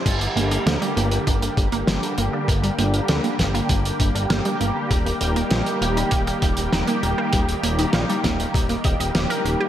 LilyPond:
<<
  \new Staff \with { instrumentName = "Synth arpeggio sound" } { \time 4/4 \key g \minor \tempo 4 = 99 g16 r16 bes16 d'16 bes16 g16 bes16 r16 d'16 bes16 g16 bes16 g16 r16 bes16 d'16 | bes16 g16 bes16 r16 d'16 bes16 g16 bes16 g16 r16 bes16 d'16 bes16 g16 bes16 r16 | ees'16 bes16 g16 bes16 g16 r16 bes16 ees'16 bes16 g16 bes16 r16 ees'16 bes16 g16 bes16 | g16 r16 bes16 ees'16 bes16 g16 bes16 r16 ees'16 bes16 ees''16 ees''16 bes16 bes'16 bes16 g'16 | }
  \new Staff \with { instrumentName = "Analog synth pad" } { \clef bass \time 4/4 \key g \minor << { <g bes g'>1~ | <g bes g'>1~ | <g bes g'>1~ | <g bes g'>1 | } \\ { d1~ | d1 | ees1~ | ees1 | } >> }
  \new Staff \with { instrumentName = "Analog synth bass" } { \clef bass \time 4/4 \key g \minor g,,16 r16 g,,16 r16 d,16 r16 g,,16 r16 g,,16 r16 g,,16 g,,16 g,,16 r16 g,,16 r16 | g,,16 r16 g,,16 r16 d,16 r16 g,,16 r16 g,,16 r16 g,,16 g,,16 g,,16 r16 g,,16 r16 | ees,,16 r16 ees,,16 r16 bes,,16 r16 ees,,16 r16 ees,,16 r16 ees,,16 ees,,16 ees,,16 r16 ees,,16 r16 | ees,,16 r16 ees,,16 r16 bes,,16 r16 ees,,16 r16 ees,,16 r16 ees,,16 ees,,16 ees,,16 r16 ees,,16 r16 | }
  \new DrumStaff \with { instrumentName = "Drums" } \drummode { \time 4/4 <cymc hh bd>16 hh16 hh16 hh16 <hh sn>16 hh16 hh16 hh16 <hh bd>16 hh16 <hh bd>16 hh16 <hh sn>16 hh16 hh8 | <hh bd>16 hh16 hh16 hh16 <hh sn>16 hh16 <hh bd sn>16 hh16 <hh bd>16 hh16 <hh bd>16 hh16 <hh sn>16 hh16 hh8 | <hh bd>16 hh16 hh16 hh16 <hh sn>16 hh16 hh16 hh16 <hh bd>16 hh16 <hh bd>16 hh16 <hh sn>16 hh16 hh8 | <hh bd>16 hh16 hh16 hh16 <hh sn>16 hh16 <hh bd sn>16 hh16 <hh bd>16 hh16 <hh bd>16 hh16 <hh sn>16 hh16 hh8 | }
>>